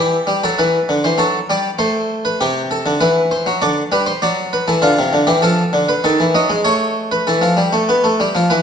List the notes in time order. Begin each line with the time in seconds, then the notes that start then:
Already playing: E3 G4
0.27 G3
0.43 F#3 A4
0.59 E3 B4
0.89 D3
1.04 E3 C5
1.18 F#3 A4
1.50 G3 D5
1.79 A3 C5
2.25 B4
2.41 C3 G4
2.71 A4
2.86 D3
3.01 E3 B4
3.31 C5
3.46 F#3
3.62 D3 D5
3.92 G3 B4
4.06 C5
4.22 F#3 D5
4.53 B4
4.68 E3 A4
4.82 D3 F4
4.99 C3
5.13 D3
5.27 E3 G4
5.42 F3 A4
5.73 D3
5.88 B4
6.04 D#3 A4
6.20 E3
6.35 F#3 D#5
6.49 G#3
6.65 A3 C#5
7.12 B4
7.27 E3 A4
7.42 F3
7.57 G3
7.73 A3
7.89 B3
8.04 A3
8.20 G3
8.35 F3
8.50 E3 B4